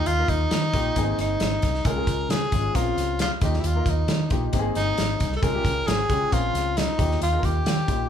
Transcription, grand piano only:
0.00 0.11 A#3 medium
0.00 0.11 D#4 medium
0.00 0.11 F4 medium
0.00 0.12 G4 medium
0.18 0.51 A#3 medium
0.18 0.51 D#4 medium
0.18 0.52 F4 medium
0.18 0.52 A#4 medium
0.73 0.95 A#3 medium
0.73 0.95 D#4 medium
0.73 0.96 F4 medium
0.73 0.96 G4 medium
0.96 1.67 A#3 medium
0.96 1.02 B3 medium
0.96 1.68 D#4 medium
0.96 1.68 G#4 loud
1.02 1.71 C4 medium
1.85 1.92 G#3 medium
1.85 1.92 C#4 medium
1.85 1.92 F4 medium
1.85 1.92 G#4 medium
1.96 2.29 G#3 medium
1.96 2.30 C#4 medium
1.96 2.30 F4 medium
1.96 2.30 G#4 medium
2.52 2.74 G#3 medium
2.52 2.73 C#4 medium
2.52 2.73 F4 medium
2.52 2.75 G#4 medium
2.73 3.27 C4 medium
2.73 3.28 C#4 medium
2.73 3.28 F4 medium
2.73 3.28 A#4 medium
3.41 3.68 A#3 medium
3.41 3.68 D#4 medium
3.41 3.68 F4 medium
3.41 3.69 G4 medium
3.75 4.08 A#3 medium
3.75 4.08 D#4 medium
3.75 4.09 F4 medium
3.75 4.09 A#4 medium
4.30 4.51 A#3 medium
4.30 4.52 D#4 medium
4.30 4.53 F4 medium
4.30 4.52 G4 medium
4.52 5.24 A#3 loud
4.52 5.24 C4 medium
4.52 5.25 D#4 medium
4.52 4.59 G4 medium
4.59 5.28 G#4 loud
5.42 5.49 G#3 medium
5.42 5.49 C#4 medium
5.42 5.49 F4 medium
5.42 5.49 G#4 medium
5.53 5.87 G#3 medium
5.53 5.87 C#4 medium
5.53 5.87 F4 medium
5.53 5.87 G4 medium
6.09 6.31 G#3 medium
6.09 6.30 C#4 medium
6.09 6.30 F4 medium
6.09 6.32 G4 medium
6.31 6.85 C4 medium
6.31 6.85 C#4 medium
6.31 6.85 F4 medium
6.31 6.85 A#4 medium
6.98 7.25 A#3 medium
6.98 7.25 D#4 medium
6.98 7.25 F4 medium
6.98 7.26 G4 medium
7.32 7.66 A#3 medium
7.32 7.66 D#4 medium
7.32 7.66 F4 medium
7.32 7.38 G#4 medium
7.38 7.69 A#4 medium
7.87 8.08 A#3 medium
7.87 8.09 D#4 medium
7.87 8.09 F4 medium
7.87 8.09 G4 medium

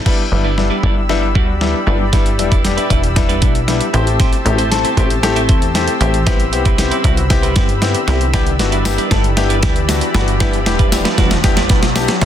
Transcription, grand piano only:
0.06 0.21 G3 loud
0.06 0.22 B3 loud
0.06 0.22 D4 loud
0.06 0.22 E4 loud
0.32 0.47 G3 medium
0.32 0.47 B3 medium
0.32 0.47 D4 medium
0.32 0.48 E4 loud
0.58 0.73 G3 medium
0.58 0.73 B3 medium
0.58 0.73 D4 medium
0.58 0.73 E4 medium
0.83 0.99 G3 medium
0.83 0.99 B3 medium
0.83 0.99 D4 medium
0.83 0.99 E4 medium
1.09 1.25 G3 loud
1.09 1.25 B3 loud
1.09 1.25 D4 loud
1.09 1.25 E4 loud
1.35 1.51 G3 medium
1.35 1.51 B3 medium
1.35 1.51 D4 medium
1.35 1.51 F#4 medium
1.61 1.77 G3 medium
1.61 1.77 B3 medium
1.61 1.77 D4 medium
1.61 1.77 E4 loud
1.87 2.02 G3 medium
1.87 2.03 B3 medium
1.87 2.03 D4 medium
1.87 2.03 E4 medium
2.13 2.28 G3 loud
2.13 2.28 B3 loud
2.13 2.29 D4 loud
2.13 2.29 E4 loud
2.39 2.54 G3 medium
2.39 2.54 B3 medium
2.39 2.54 D4 medium
2.39 2.54 E4 loud
2.64 2.80 G3 medium
2.64 2.80 B3 medium
2.64 2.80 D4 medium
2.64 2.80 G4 medium
2.90 3.06 G3 medium
2.90 3.06 B3 medium
2.90 3.06 D4 medium
2.90 3.06 E4 loud
3.16 3.32 G3 loud
3.16 3.32 B3 loud
3.16 3.32 D4 loud
3.16 3.32 E4 loud
3.42 3.58 G3 medium
3.42 3.58 B3 medium
3.42 3.58 D4 medium
3.42 3.58 E4 medium
3.68 3.83 G3 medium
3.68 3.83 B3 medium
3.68 3.84 D4 medium
3.68 3.84 E4 loud
3.93 4.35 A3 medium
3.93 4.35 C4 medium
3.93 4.35 E4 medium
3.93 4.35 G4 loud
4.45 4.61 A3 medium
4.45 4.61 C4 medium
4.45 4.61 E4 medium
4.45 4.61 G4 loud
4.71 4.87 A3 medium
4.71 4.87 C4 medium
4.71 4.87 E4 medium
4.71 4.87 A4 loud
4.97 5.13 A3 medium
4.97 5.13 C4 medium
4.97 5.13 E4 medium
4.97 5.13 G4 medium
5.23 5.39 A3 loud
5.23 5.39 C4 loud
5.23 5.39 E4 loud
5.23 5.39 G4 loud
5.49 5.65 A3 medium
5.49 5.65 C4 medium
5.49 5.65 E4 medium
5.49 5.65 A4 medium
5.75 5.90 A3 medium
5.75 5.90 C4 medium
5.75 5.91 E4 medium
5.75 5.91 G4 loud
6.01 6.16 A3 medium
6.01 6.16 C4 medium
6.01 6.16 E4 medium
6.01 6.17 G4 loud
6.26 6.42 B3 loud
6.26 6.42 C4 loud
6.26 6.42 E4 loud
6.26 6.42 G4 loud
6.52 6.68 B3 medium
6.52 6.68 C4 medium
6.52 6.68 E4 medium
6.52 6.68 G4 loud
6.78 6.94 B3 medium
6.78 6.94 C4 medium
6.78 6.94 E4 medium
6.78 6.94 G4 loud
7.04 7.20 B3 medium
7.04 7.20 C4 medium
7.04 7.20 E4 medium
7.04 7.20 F#4 loud
7.30 7.46 B3 loud
7.30 7.46 C4 loud
7.30 7.46 E4 loud
7.30 7.46 G4 loud
7.56 7.71 B3 medium
7.56 7.72 C4 medium
7.56 7.72 E4 medium
7.56 7.72 G4 medium
7.82 7.97 B3 medium
7.82 7.97 C4 medium
7.82 7.97 E4 medium
7.82 7.98 G4 medium
8.08 8.23 B3 medium
8.08 8.23 C4 medium
8.08 8.23 E4 medium
8.08 8.23 G4 loud
8.33 8.49 B3 loud
8.33 8.49 D4 loud
8.33 8.49 E4 loud
8.33 8.49 G4 loud
8.59 8.75 B3 medium
8.59 8.75 D4 medium
8.59 8.75 E4 medium
8.59 8.75 F#4 loud
8.85 9.01 B3 medium
8.85 9.01 D4 medium
8.85 9.01 E4 medium
8.85 9.01 G4 medium
9.11 9.27 B3 medium
9.11 9.27 D4 medium
9.11 9.27 E4 medium
9.11 9.27 A4 loud
9.37 9.52 B3 loud
9.37 9.53 D4 loud
9.37 9.53 E4 loud
9.37 9.53 G4 loud
9.63 9.78 B3 medium
9.63 9.78 D4 medium
9.63 9.78 E4 medium
9.63 9.79 G4 loud
9.88 10.04 B3 medium
9.88 10.04 D4 medium
9.88 10.04 E4 medium
9.88 10.04 F#4 medium
10.14 10.30 B3 medium
10.14 10.30 D4 medium
10.14 10.30 E4 medium
10.14 10.30 F#4 loud
10.40 10.56 B3 loud
10.40 10.56 D4 loud
10.40 10.56 E4 loud
10.40 10.56 G4 loud
10.66 10.82 B3 medium
10.66 10.82 D4 medium
10.66 10.82 E4 medium
10.66 10.82 G4 loud
10.92 11.08 B3 medium
10.92 11.08 D4 medium
10.92 11.08 E4 medium
10.92 11.08 G4 loud
11.18 11.34 B3 medium
11.18 11.34 D4 medium
11.18 11.34 E4 medium
11.18 11.34 F#4 loud
11.44 11.59 B3 loud
11.44 11.60 D4 loud
11.44 11.60 E4 loud
11.44 11.60 G4 loud
11.70 11.85 B3 medium
11.70 11.85 D4 medium
11.70 11.85 E4 medium
11.70 11.86 G4 medium
11.95 12.11 B3 medium
11.95 12.11 D4 medium
11.95 12.11 E4 medium
11.95 12.11 G4 loud
11.95 12.20 A5 medium
12.21 12.25 A3 loud
12.21 12.25 C4 medium
12.21 12.25 E4 medium
12.21 12.25 G4 loud
12.21 12.25 G5 medium

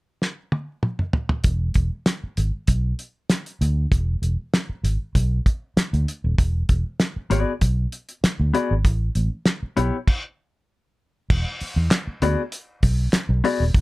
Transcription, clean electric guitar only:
7.30 7.51 B3 medium
7.30 7.51 F#4 medium
7.30 7.52 G#4 medium
7.30 7.52 D5 medium
8.54 8.73 B3 medium
8.54 8.73 F#4 medium
8.54 8.73 G#4 medium
8.54 8.73 D5 medium
9.77 9.96 B3 medium
9.77 9.96 E4 medium
9.77 9.96 G4 medium
9.77 9.96 C#5 medium
12.22 12.41 B3 medium
12.22 12.41 F#4 medium
12.22 12.41 G#4 loud
12.22 12.41 D5 loud
13.44 13.63 B3 medium
13.44 13.63 F#4 medium
13.44 13.63 G#4 medium
13.44 13.63 D5 loud

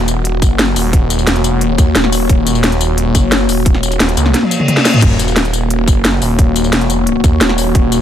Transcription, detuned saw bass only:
0.00 0.41 D#1 loud
0.42 0.75 F#1 loud
0.76 1.26 D#1 loud
1.27 1.77 E1 loud
1.78 1.94 D#2 loud
1.95 2.28 D#1 medium
2.29 3.13 D#1 loud
3.15 3.47 F#1 loud
3.49 3.99 D#1 loud
4.00 4.16 D#1 medium
4.17 4.34 C#2 loud
5.02 5.86 D#1 medium
5.88 6.20 F#1 loud
6.22 6.71 D#1 loud
6.73 7.22 E1 loud
7.24 7.40 D#2 loud
7.41 7.74 D#1 loud
7.75 8.01 D#1 loud

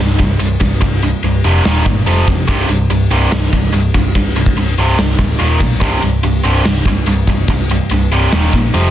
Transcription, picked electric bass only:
0.00 0.13 C1 medium
0.20 0.34 C1 medium
0.40 0.55 C1 medium
0.61 0.76 C1 medium
0.82 1.11 C1 medium
1.24 1.38 C1 medium
1.45 1.59 F1 medium
1.66 1.81 D#1 medium
1.86 2.01 G1 medium
2.08 2.22 F1 medium
2.28 2.43 F2 medium
2.49 2.63 C1 medium
2.69 2.84 C1 medium
2.90 3.05 C1 medium
3.11 3.26 C1 medium
3.32 3.47 C1 medium
3.53 3.68 C1 medium
3.74 3.88 C1 medium
3.94 4.09 C1 medium
4.15 4.45 C1 medium
4.56 4.71 C1 medium
4.78 4.93 C1 medium
4.99 5.14 C1 medium
5.19 5.34 D1 medium
5.41 5.56 D#1 medium
5.60 5.75 B1 medium
5.81 5.97 C1 medium
6.03 6.18 C1 medium
6.24 6.39 C1 medium
6.45 6.60 C1 medium
6.65 6.80 C1 medium
6.86 7.01 C1 medium
7.07 7.22 C1 loud
7.28 7.43 C1 medium
7.48 7.78 C1 medium
7.91 8.06 C1 medium
8.12 8.27 C1 medium
8.33 8.48 D#1 medium
8.53 8.68 A#1 medium
8.75 8.90 F1 medium

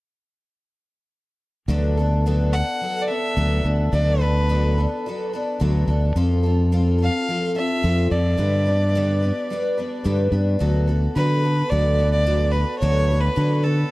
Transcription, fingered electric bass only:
1.68 2.61 D2 medium
3.37 3.60 D2 medium
3.65 3.88 D2 medium
3.93 4.85 D2 medium
5.61 5.84 D2 medium
5.88 6.11 D2 medium
6.16 7.08 F2 medium
7.84 8.06 F2 medium
8.11 8.34 F2 medium
8.38 9.30 G2 medium
10.05 10.28 G2 medium
10.32 10.55 G2 medium
10.61 11.07 D2 medium
11.16 11.62 D3 medium
11.72 12.63 D2 medium
12.82 13.28 D2 medium
13.37 13.83 D3 medium

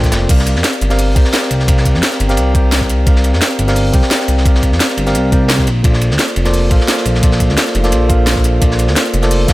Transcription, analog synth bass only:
0.00 0.13 A#1 loud
0.12 0.28 F1 medium
0.29 0.57 C2 loud
0.56 0.63 F2 medium
0.81 1.15 G1 medium
1.16 1.24 C2 loud
1.51 1.96 C2 medium
1.94 2.02 F2 medium
2.20 2.39 G1 loud
2.37 3.05 C2 medium
3.07 3.35 C2 loud
3.33 3.41 F2 medium
3.59 3.92 G1 medium
3.93 4.02 C2 medium
4.28 4.73 C2 medium
4.72 4.79 F2 medium
4.97 5.16 G1 medium
5.15 5.32 C2 medium
5.32 5.68 C2 medium
5.67 5.83 A#1 medium
5.84 6.12 A#1 loud
6.11 6.18 D2 medium
6.36 6.70 F1 loud
6.71 6.79 A#1 loud
7.06 7.51 A#1 medium
7.49 7.57 D2 medium
7.75 7.94 F1 loud
7.92 8.60 A#1 medium
8.62 8.89 A#1 loud
8.88 8.95 D2 medium
9.14 9.47 F1 loud
9.48 9.53 A#1 loud

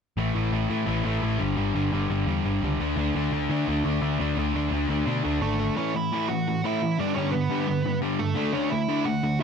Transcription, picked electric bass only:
0.17 0.31 A1 medium
0.35 0.49 A1 medium
0.51 0.65 A1 medium
0.70 0.84 A2 medium
0.87 1.01 A1 medium
1.05 1.19 A1 medium
1.23 1.37 A1 medium
1.41 1.54 G1 medium
1.57 1.71 G1 medium
1.75 1.89 G1 medium
1.93 2.06 G1 medium
2.10 2.24 G1 medium
2.27 2.41 E2 medium
2.45 2.59 G1 medium
2.62 2.76 C#2 medium
2.80 2.94 D2 medium
2.96 3.10 D2 medium
3.15 3.28 D2 medium
3.32 3.46 D2 medium
3.50 3.63 D3 medium
3.68 3.81 D2 medium
3.85 3.99 D2 medium
4.02 4.16 D2 medium
4.19 4.33 D2 medium
4.37 4.51 D2 medium
4.54 4.68 D2 medium
4.71 4.85 D2 medium
4.89 5.03 D2 medium
5.07 5.21 B2 medium
5.25 5.39 D2 medium
5.41 5.69 G#1 medium

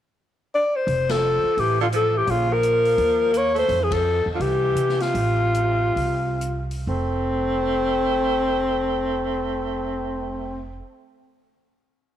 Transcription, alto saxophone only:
0.55 0.77 D5 medium
0.76 1.12 C5 loud
1.11 1.61 A4 medium
1.60 1.81 G4 medium
1.82 1.88 F4 medium
1.96 2.19 A4 medium
2.18 2.32 G4 medium
2.30 2.54 F4 medium
2.53 3.39 A#4 medium
3.37 3.57 C#5 medium
3.59 3.85 C5 medium
3.84 3.94 G#4 medium
3.93 4.27 A4 medium
4.35 4.43 F4 medium
4.41 5.03 G4 medium
5.02 6.71 F4 medium
6.88 10.80 C4 medium

